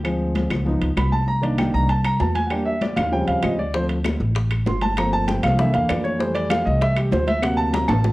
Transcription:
Already playing: D2
0.04 F3 G#3 C4, high conga, high timbale, claves
0.20 high conga
0.35 high conga, high timbale, low timbale
0.50 C#2, high conga, low conga, high timbale, claves
0.65 F3 B3 D#4, high conga, low conga
0.81 C#2, high conga, high timbale
0.97 C2 B5, high conga, high timbale, low timbale, claves
1.12 A5, high conga
1.28 A#5, high conga
1.42 D#3 A#3 D4 D5, high conga, high timbale
1.58 G5, high conga, high timbale, low timbale, claves
1.74 C2 A#5, high conga
1.89 A5, high timbale
2.04 A#5, high conga, high timbale, claves
2.20 E2 A5, high conga, low timbale
2.35 G#5, high conga, high timbale
2.46 G3 F#5
2.50 A#3 D4 G5, high conga, high timbale, claves
2.65 E5, high conga
2.81 D5, high conga, high timbale, low timbale
2.96 D#2 F5, high conga, low conga, high timbale, claves
3.11 C#3 F3 G3 C4 G5, high conga
3.27 D#2 F5, high conga, high timbale
3.43 D2 D#5, high conga, high timbale, low timbale, claves
3.59 D5
3.74 F3 A3 C4 C5, high bongo
3.89 high bongo, high conga, high timbale
4.04 high bongo, high conga, high timbale, low timbale, claves
4.20 A1, high conga
4.35 high bongo, high conga, high timbale
4.51 high bongo, high conga, high timbale, claves
4.66 G1 C6, high bongo, low bongo, high conga, low timbale
4.82 A5, high bongo, high conga, high timbale
4.97 F3 A3 A#3 C4 A#5, high bongo, high conga, high timbale, claves
5.13 A5, high bongo, high conga
5.28 G5, high bongo, high conga, high timbale, low timbale
5.43 C2 F5, high conga, low conga, high timbale, claves
5.58 D3 E3 A#3 E5, high bongo, high conga, low conga
5.74 E2 F5, high bongo, high conga, high timbale
5.89 F2 D5, high bongo, low bongo, high conga, high timbale, low timbale, claves
6.04 C#5, high bongo
6.19 E3 G3 A3 C5, high bongo, high conga
6.34 D5, high bongo, high conga, high timbale
6.50 F5, high bongo, high conga, high timbale, low timbale, claves
6.65 C2 D#5, high conga
6.81 E5, high bongo, high conga, high timbale
6.96 G4, high bongo, high conga, high timbale, claves
7.12 D2 C5, high bongo, low bongo, high conga, low timbale
7.27 E5, high bongo, high conga, high timbale
7.41 C3 F#3 A#3 F#5, high bongo, high conga, high timbale, claves
7.57 A5, high bongo, high conga
7.73 A#5, high bongo, high conga, high timbale, low timbale
7.88 A1 A5, high conga, low conga, high timbale, claves
8.04 high bongo, high conga, low timbale

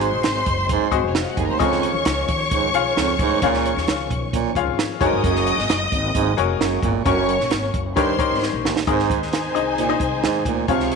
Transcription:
Already playing: G#2 F#3 G#3 C4 F#4 G#4 C5 D#5 C6
0.01 closed hi-hat
0.12 A#1
0.23 G#1, snare, closed hi-hat
0.46 F#1, kick, closed hi-hat
0.69 G#2, kick, closed hi-hat
0.91 G#1 F#4 G#4 C5 D#5, kick, closed hi-hat
1.04 F1 C#4
1.08 C#5
1.15 D#4 D#5, snare, closed hi-hat
1.22 F4 F5
1.30 F#4 F#5
1.37 F#1 D#2 G#4 G#5, kick, closed hi-hat
1.45 A#4 A#5
1.49 D2 C5 C6
1.59 C#2 F2 C#3 D#3 F3 C#4 F4 G#4 C#5 D#5 C#6, kick, closed hi-hat
1.72 snare
1.83 closed hi-hat
1.94 D#2
2.05 C#2, snare, closed hi-hat
2.28 D#2, kick, closed hi-hat
2.51 D#2 G#2, kick, closed hi-hat
2.74 B1 F4 G#4 C#5 F5, closed hi-hat
2.96 C#2 F2, snare, closed hi-hat
3.19 D2 G#2, kick, closed hi-hat
3.42 C#2 A#2 C#3 F4 G#4 C#5 F5, kick, closed hi-hat
3.54 snare
3.66 closed hi-hat
3.76 D#2, snare
3.88 C#2, snare, closed hi-hat
4.11 B1, kick, closed hi-hat
4.33 A#2, kick, closed hi-hat
4.55 C#2 F4 G#4 C#5 F5, kick, closed hi-hat
4.67 G#1
4.79 snare, closed hi-hat
5.01 F#1 G#2 F#3 G#3 A#3 F#4 G#4 A4 C#5 D#5 D#6, kick, closed hi-hat
5.06 A#4
5.13 G1
5.24 F#1 F#2, kick, closed hi-hat
5.35 snare
5.47 closed hi-hat
5.58 G#1, snare
5.69 F#1, snare, closed hi-hat
5.92 G#1, kick, closed hi-hat
6.15 G#1 G#2, kick, closed hi-hat
6.37 F1 F#4 G#4 A#4 C#5, closed hi-hat
6.60 F#1 F#2, snare, closed hi-hat
6.83 G1 A#2, kick, closed hi-hat
7.05 F#1 F#2 C#4 F#4 A#4 C#5 C#6, kick, closed hi-hat
7.29 closed hi-hat
7.40 A#1, snare
7.51 G#1, snare, closed hi-hat
7.74 F#1, kick, closed hi-hat
7.96 D#2 G2 D#3 G3 C#4 D#4 G4 A#4 C5 C#5 C6, kick, closed hi-hat
8.18 D#4 G4 A#4 C#5, muted upright bass stroke, kick, closed hi-hat
8.30 G#1
8.43 snare
8.53 A#1
8.64 A1 D#2, snare
8.77 snare
8.87 G#1 G#2 D#3 G#3 C4 D#4 G#4 A#4 C5 D#5 G#5, kick, closed hi-hat
8.93 C5
8.99 snare
9.10 D#2, kick, closed hi-hat
9.22 snare
9.33 snare, closed hi-hat
9.55 C2 D#4 G#4 C5 D#5, closed hi-hat
9.78 A#2, closed hi-hat
9.89 D#4 G#4 C5 D#5
10.00 C2, kick, closed hi-hat
10.23 D#2 G#2, snare, closed hi-hat
10.45 D2 A#2, kick, closed hi-hat
10.67 C#2 C3 F3 F4 G#4 C#5 F5 C#6, kick, closed hi-hat
10.80 snare
10.91 closed hi-hat

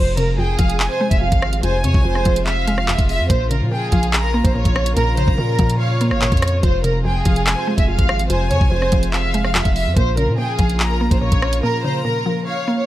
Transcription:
Already playing: F1 F2 C3 F3 G#3 F4 C5
0.17 C3 A#4, closed hi-hat
0.38 F2 G#4 G5
0.59 F1 F3 F5, kick, closed hi-hat
0.70 closed hi-hat
0.80 G#5, clap
0.90 C5
1.01 G#3
1.11 F1 E5, kick, closed hi-hat
1.21 F2 F5
1.32 G#1, kick, closed hi-hat
1.42 cross-stick
1.53 closed hi-hat
1.63 F1 F2 C5 G#5, closed hi-hat
1.84 F2 C3 C#5, closed hi-hat
1.94 C2, kick
2.05 F1 F2 C5
2.15 cross-stick
2.25 F1 F3, kick, closed hi-hat
2.36 closed hi-hat
2.46 E5 F5, clap
2.67 G#3, closed hi-hat
2.78 F5, cross-stick
2.88 F2 E5, clap
2.99 F1, kick, closed hi-hat
3.09 E5, open hi-hat
3.19 F2
3.30 A#1 A#2 C#3 A#3 C5, kick, closed hi-hat
3.51 C#3 A#4, closed hi-hat
3.61 A#2
3.71 A#2 G#4 G5
3.92 A#1 F3 F5, kick, closed hi-hat
4.03 closed hi-hat
4.13 A#5, clap
4.24 A#4
4.34 A#3
4.45 A#1 C5, kick, closed hi-hat
4.55 A#2 C#5
4.65 A#1, kick, closed hi-hat
4.76 cross-stick
4.86 closed hi-hat
4.96 A#1 A#2 A#4 A#5, closed hi-hat
5.17 C#3 C5, closed hi-hat
5.28 A#1, kick
5.38 A#2 A#4
5.59 A#2 F3, kick, closed hi-hat
5.70 closed hi-hat
5.80 C#5 F5
6.01 A#3, closed hi-hat
6.11 G#1 C#5, cross-stick
6.22 A#2, clap
6.32 F2, kick, closed hi-hat
6.37 closed hi-hat
6.42 cross-stick, closed hi-hat
6.48 closed hi-hat
6.63 F1 F2 C3 F3 G#3 C5, kick, closed hi-hat
6.84 C3 A#4, closed hi-hat
7.05 F2 G#4 G5
7.25 F1 F3 F5, kick, closed hi-hat
7.36 closed hi-hat
7.47 G#5, clap
7.57 C5
7.67 G#3
7.78 F1 E5, kick, closed hi-hat
7.88 F2 F5
7.99 G#1, kick, closed hi-hat
8.09 cross-stick
8.19 closed hi-hat
8.30 F1 F2 C5 G#5, closed hi-hat
8.51 F2 C3 C#5, closed hi-hat
8.61 C2, kick
8.71 F1 F2 C5
8.82 cross-stick
8.92 F1 F3, kick, closed hi-hat
9.03 closed hi-hat
9.13 E5 F5, clap
9.34 G#3, closed hi-hat
9.44 F5, cross-stick
9.55 F2 E5, clap
9.65 F1, kick, closed hi-hat
9.76 E5, open hi-hat
9.86 F2
9.97 A#1 A#2 C#3 A#3 F4 C5, kick, closed hi-hat
10.17 C#3 A#4, closed hi-hat
10.28 A#2
10.38 A#2 G#4 G5
10.59 A#1 F3 F5, kick, closed hi-hat
10.70 closed hi-hat
10.80 A#5, clap
10.90 A#4
11.01 A#3
11.11 A#1 C5, kick, closed hi-hat
11.21 A#2 C#5
11.32 A#1, kick, closed hi-hat
11.42 cross-stick
11.53 closed hi-hat
11.63 A#2 A#4 A#5
11.84 C#3 C5
12.05 A#2 A#4
12.26 F3
12.46 C#5 F5
12.68 A#3
12.78 C#5

